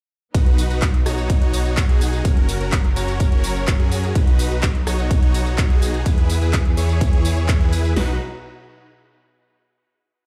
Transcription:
0.34 detuned saw bass B1, string section F#3 B3 D#4, supersaw synth D#4 F#4 B4, kick, closed hi-hat, ride, tambourine
0.46 closed hi-hat
0.58 open hi-hat, tambourine
0.70 detuned saw bass B1, supersaw synth D#4 F#4 B4, closed hi-hat, tambourine
0.82 kick, clap, closed hi-hat, ride, tambourine
0.94 closed hi-hat
1.06 detuned saw bass B1, supersaw synth D#4 F#4 C#5, cross-stick, open hi-hat, tambourine
1.18 closed hi-hat, tambourine
1.30 kick, closed hi-hat, ride, tambourine
1.41 detuned saw bass B1, supersaw synth D#4 F#4 C#5, closed hi-hat
1.54 open hi-hat, tambourine
1.65 closed hi-hat, tambourine
1.77 kick, clap, closed hi-hat, ride, tambourine
1.89 detuned saw bass B1, supersaw synth D#4 F#4 G#4, closed hi-hat
2.01 open hi-hat, tambourine
2.13 closed hi-hat, tambourine
2.25 detuned saw bass F#1, string section F#3 C#4 A#4, supersaw synth C#4 F#4 A#4, kick, closed hi-hat, ride, tambourine
2.37 closed hi-hat
2.49 open hi-hat, tambourine
2.61 detuned saw bass F#1, supersaw synth C#4 F#4 A#4, closed hi-hat, tambourine
2.72 kick, clap, closed hi-hat, ride, tambourine
2.84 closed hi-hat
2.96 detuned saw bass F#1, supersaw synth C#4 F#4 C#5, open hi-hat, tambourine
3.08 closed hi-hat, tambourine
3.20 kick, closed hi-hat, ride, tambourine
3.32 detuned saw bass F#1, supersaw synth C#4 F#4 C#5, closed hi-hat
3.44 open hi-hat, tambourine
3.56 closed hi-hat, tambourine
3.68 kick, clap, closed hi-hat, ride, tambourine
3.80 detuned saw bass F#2, supersaw synth C#4 F#4 G#4, closed hi-hat
3.92 open hi-hat, tambourine
4.04 closed hi-hat, tambourine
4.15 detuned saw bass B1, string section F#3 B3 D#4, supersaw synth D#4 F#4 B4, kick, closed hi-hat, ride, tambourine
4.27 closed hi-hat
4.39 open hi-hat, tambourine
4.51 detuned saw bass B1, supersaw synth D#4 F#4 B4, closed hi-hat, tambourine
4.63 kick, clap, closed hi-hat, ride, tambourine
4.75 closed hi-hat
4.87 detuned saw bass B1, supersaw synth D#4 F#4 C#5, cross-stick, open hi-hat, tambourine
4.99 closed hi-hat, tambourine
5.11 kick, closed hi-hat, ride, tambourine
5.23 detuned saw bass B1, supersaw synth D#4 F#4 C#5, closed hi-hat
5.34 open hi-hat, tambourine
5.46 closed hi-hat, tambourine
5.58 kick, clap, closed hi-hat, ride, tambourine
5.70 detuned saw bass B1, supersaw synth D#4 F#4 G#4, closed hi-hat
5.82 open hi-hat, tambourine
5.94 closed hi-hat, tambourine
6.06 detuned saw bass E2, string section E3 G#4, supersaw synth E4 G#4 B4, kick, closed hi-hat, ride, tambourine
6.18 closed hi-hat
6.30 open hi-hat, tambourine
6.42 detuned saw bass E2, supersaw synth E4 G#4 B4, tambourine
6.53 kick, clap, closed hi-hat, ride, tambourine
6.65 closed hi-hat
6.77 detuned saw bass E2, supersaw synth E4 G#4 C#5, open hi-hat, tambourine
6.89 closed hi-hat, tambourine
7.01 kick, closed hi-hat, ride, tambourine
7.13 detuned saw bass E2, supersaw synth E4 G#4 C#5, closed hi-hat
7.25 open hi-hat, tambourine
7.37 closed hi-hat, tambourine
7.49 kick, clap, closed hi-hat, ride, tambourine
7.61 detuned saw bass E2, supersaw synth E4 G#4 B4, closed hi-hat
7.73 open hi-hat, tambourine
7.84 closed hi-hat, tambourine
7.96 detuned saw bass B1, string section B2 F#3 D#4, supersaw synth D#4 F#4 B4, snare, open hi-hat

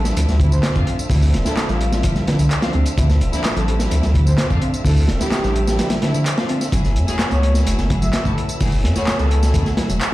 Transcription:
Already playing: sub bass A1, tonewheel organ D3 F3 A3 C4 E5, picked electric bass G3
0.05 string section F3 C4 D4 E4, snare, tambourine
0.17 sub bass D2, picked electric bass F3, closed hi-hat, tambourine
0.28 sub bass D2, picked electric bass G3, snare, tambourine
0.40 picked electric bass D3, string section F3 C4 D4 E4, kick, closed hi-hat
0.52 picked electric bass D3, soft synth lead C5, tambourine
0.63 soft synth lead C5, snare, clap, closed hi-hat, tambourine
0.76 sub bass F2, string section F3 C4 D4 F4, kick, tambourine
0.87 picked electric bass C4, closed hi-hat
0.99 tambourine
1.10 sub bass D2, picked electric bass D3, string section F3 C4 D4 E4, kick, open hi-hat, tambourine
1.22 tambourine
1.34 sub bass D1, snare, closed hi-hat
1.45 string section F3 C4 D4 E4, soft synth lead A4, snare, tambourine
1.57 soft synth lead A4, snare, clap, closed hi-hat, tambourine
1.68 sub bass A1, string section F3 C4 D4 E4, picked electric bass G3, soft synth lead F4, snare, tambourine
1.81 closed hi-hat
1.92 string section F3 C4 D4 E4, snare, tambourine
2.03 sub bass D1, picked electric bass F3, kick, closed hi-hat, tambourine
2.16 picked electric bass G3, snare, tambourine
2.27 picked electric bass D3, string section F3 C4 D4 E4, snare, closed hi-hat
2.39 sub bass C2, picked electric bass D3, closed hi-hat, tambourine
2.51 clap, closed hi-hat, tambourine
2.62 string section F3 C4 D4 F4, snare, closed hi-hat, tambourine
2.73 sub bass D2, picked electric bass C4, closed hi-hat
2.86 closed hi-hat, tambourine
2.98 sub bass D2, picked electric bass D3, string section F3 C4 D4 E4, kick, closed hi-hat, tambourine
3.10 snare, tambourine
3.21 sub bass D1, closed hi-hat
3.33 string section F3 C4 D4 E4, snare, tambourine
3.44 snare, clap, closed hi-hat, tambourine
3.56 sub bass A1, string section F3 C4 D4 E4, picked electric bass G3, soft synth lead A4, closed hi-hat, tambourine
3.68 soft synth lead A4, closed hi-hat
3.80 string section F3 C4 D4 E4, snare, tambourine
3.91 sub bass D2, picked electric bass F3, closed hi-hat, tambourine
4.03 sub bass D2, picked electric bass G3, snare, tambourine
4.14 picked electric bass D3, string section F3 C4 D4 E4, kick, closed hi-hat
4.27 picked electric bass D3, soft synth lead C5, tambourine
4.38 soft synth lead C5, snare, clap, closed hi-hat, tambourine
4.50 sub bass F2, string section F3 C4 D4 F4, kick, tambourine
4.62 picked electric bass C4, closed hi-hat
4.74 tambourine
4.85 sub bass D2, picked electric bass D3, string section F3 C4 D4 E4, soft synth lead A4, kick, open hi-hat, tambourine
4.97 soft synth lead A4, tambourine
5.08 sub bass D1, snare, closed hi-hat
5.20 string section F3 C4 D4 E4, soft synth lead G4, snare, tambourine
5.32 snare, clap, closed hi-hat, tambourine
5.44 sub bass A1, string section F3 C4 D4 E4, picked electric bass G3, snare, tambourine
5.56 closed hi-hat
5.67 string section F3 C4 D4 E4, soft synth lead G4, snare, tambourine
5.79 picked electric bass F3, soft synth lead G4, snare, closed hi-hat, tambourine
5.90 picked electric bass G3, snare, closed hi-hat, tambourine
6.02 picked electric bass D3, string section F3 C4 D4 E4, snare, closed hi-hat
6.14 picked electric bass D3, tambourine
6.26 clap, closed hi-hat, tambourine
6.38 string section F3 C4 D4 F4, snare, tambourine
6.49 picked electric bass C4, closed hi-hat
6.61 snare, tambourine
6.72 sub bass F#1, tonewheel organ C#3 E3 F#3 A3, picked electric bass F#3, string section A3 E4 F#4 G#4, kick, closed hi-hat, tambourine
6.85 snare, tambourine
6.96 sub bass F#2, closed hi-hat
7.08 string section A3 E4 F#4 G#4, snare, tambourine
7.19 snare, clap, closed hi-hat, tambourine
7.31 sub bass C#2, string section A3 E4 F#4 G#4, picked electric bass B3, soft synth lead C#5, closed hi-hat, tambourine
7.43 soft synth lead C#5, closed hi-hat
7.54 string section A3 E4 F#4 G#4, snare, tambourine
7.66 sub bass F#1, picked electric bass A3, closed hi-hat, tambourine
7.78 sub bass F#1, picked electric bass B3, snare, tambourine
7.90 picked electric bass F#3, string section A3 E4 F#4 G#4, kick, closed hi-hat
8.02 picked electric bass F#3, soft synth lead E5, tambourine
8.13 soft synth lead E5, snare, clap, closed hi-hat, tambourine
8.25 sub bass A1, string section A3 E4 F#4 A4, kick, tambourine
8.37 picked electric bass E4, closed hi-hat
8.49 tambourine
8.60 sub bass F#1, picked electric bass F#3, string section A3 E4 F#4 G#4, kick, open hi-hat, tambourine
8.72 tambourine
8.84 sub bass F#2, snare, closed hi-hat
8.96 string section A3 E4 F#4 G#4, soft synth lead C#5, snare, tambourine
9.07 soft synth lead C#5, snare, clap, closed hi-hat, tambourine
9.18 sub bass C#2, string section A3 E4 F#4 G#4, picked electric bass B3, soft synth lead A4, snare, tambourine
9.31 closed hi-hat
9.43 string section A3 E4 F#4 G#4, snare, tambourine
9.54 sub bass F#2, picked electric bass A3, kick, closed hi-hat, tambourine
9.66 picked electric bass B3, snare, tambourine
9.77 picked electric bass F#3, string section A3 E4 F#4 G#4, snare, closed hi-hat
9.90 sub bass E1, picked electric bass F#3, closed hi-hat, tambourine
10.01 clap, closed hi-hat, tambourine

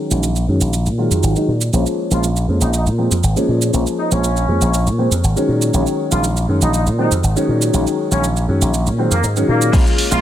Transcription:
0.11 slap bass A#1, grand piano D#3 F#3 G#3 C#4, cabasa
0.23 cabasa
0.36 cabasa
0.48 slap bass F#2, grand piano D#3 F#3 G#3 C#4
0.61 slap bass A#1, cabasa
0.73 cabasa
0.86 slap bass A#2, cabasa
0.98 grand piano D#3 F#3 G#3 F4
1.11 slap bass F2, cabasa
1.23 slap bass G#1, cabasa
1.36 grand piano D#3 F#3 G#3 D#4, cabasa
1.48 slap bass A#2
1.61 cabasa
1.73 slap bass A#1, grand piano F3 G#3 A#3 C#4, cabasa
1.86 cabasa
2.11 slap bass A#1, grand piano F3 G#3 A#3 C#4, horn section F4, cabasa
2.23 cabasa
2.36 cabasa
2.48 slap bass F2, grand piano F3 G#3 A#3 C#4
2.61 slap bass A#1, horn section D#4, cabasa
2.74 horn section D#4, cabasa
2.86 slap bass A#2, cabasa
2.98 grand piano F3 G#3 A#3 C4
3.11 slap bass F2, cabasa
3.23 slap bass G#1, cabasa
3.36 grand piano F3 G#3 A#3 C#4, cabasa
3.48 slap bass A#2
3.62 cabasa
3.73 slap bass A#1, grand piano F3 G#3 A#3 C#4, cabasa
3.87 cabasa
3.98 horn section D#4
4.11 slap bass A#1, grand piano F3 G#3 A#3 C#4, horn section C#4, cabasa
4.24 cabasa
4.37 cabasa
4.48 slap bass F2, grand piano F3 G#3 A#3 C#4
4.61 slap bass A#1, cabasa
4.74 cabasa
4.86 slap bass A#2, cabasa
4.98 grand piano F3 G#3 A#3 C4
5.11 slap bass F2, cabasa
5.24 slap bass G#1, cabasa
5.36 grand piano D#3 F#3 G#3 C#4, cabasa
5.49 slap bass A#2
5.62 cabasa
5.73 slap bass A#1, grand piano D#3 F#3 G#3 C#4, cabasa
5.87 cabasa
6.11 slap bass A#1, grand piano D#3 F#3 G#3 C#4, horn section F4, cabasa
6.24 cabasa
6.37 cabasa
6.48 slap bass F#2, grand piano D#3 F#3 G#3 C#4
6.61 slap bass A#1, horn section D#4, cabasa
6.74 horn section D#4, cabasa
6.86 slap bass A#2, cabasa
6.98 grand piano D#3 F#3 G#3 C4, horn section D#4
7.12 slap bass F2, cabasa
7.23 slap bass G#1, cabasa
7.36 grand piano D#3 F#3 G#3 C#4, cabasa
7.49 slap bass A#2
7.62 cabasa
7.73 slap bass A#1, grand piano D#3 F#3 G#3 C#4, cabasa
7.87 cabasa
8.11 slap bass A#1, grand piano D#3 F#3 G#3 C#4, horn section C#4, cabasa
8.24 cabasa
8.37 cabasa
8.48 slap bass F#2, grand piano D#3 F#3 G#3 C#4
8.61 slap bass A#1, cabasa
8.74 cabasa
8.86 slap bass A#2, cabasa
8.98 grand piano D#3 F#3 G#3 C4
9.11 slap bass F2, horn section A#3, cabasa
9.24 slap bass G#2, cabasa
9.36 grand piano D#3 F#3 G#3 C#4, cabasa
9.48 slap bass A#2, horn section A#3
9.62 cabasa
9.73 slap bass A#1, grand piano G#3 A#3 C#4 F4, kick, crash, cabasa
9.87 cabasa
9.98 open hi-hat
10.11 slap bass A#1, grand piano G#3 A#3 C#4 F4, horn section F4, cabasa

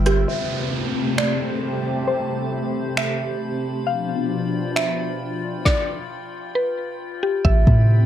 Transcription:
Already playing: 808-style bass G1, analog synth pad D3 G3 B3 E5, synth texture F4 G5 B5
0.06 synth pluck G4, cross-stick, closed hi-hat
0.28 analog synth pad C3 A3 C4 G4, synth texture G4 C5 A5 B5, synth pluck E5, downlifter
1.18 synth pluck D5, finger snap
2.07 synth pluck C5
2.97 synth pluck E5, finger snap
3.87 analog synth pad B2 F3 D4, synth texture F4 G5, synth pluck F5
4.76 synth pluck E5, finger snap
5.65 synth pluck D5, kick, snare
6.55 synth pluck B4
7.23 synth pluck G4
7.45 808-style bass A1, analog synth pad C3 A3 C4 G4, synth texture C4 G5 B5, synth pluck E5, kick
7.67 808-style bass A2, kick

